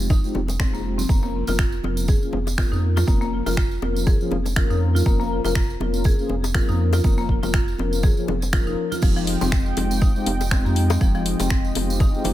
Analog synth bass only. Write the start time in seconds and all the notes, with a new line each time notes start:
Already playing: F1
0.35 F1
0.73 F1
1.09 F1
1.48 F1
1.84 F1
2.33 F1
2.72 F2
3.08 F1
3.46 F1
3.82 F1
4.31 F1
4.70 F2
5.06 F1
5.44 F1
5.80 F1
6.30 F1
6.69 F2
7.04 F1
7.43 F1
7.79 F1
8.28 F1
8.67 F1
9.03 F1
9.41 F1
9.77 F1
10.27 F1
10.65 F2
11.01 F1
11.40 F1
11.75 F1
12.25 F1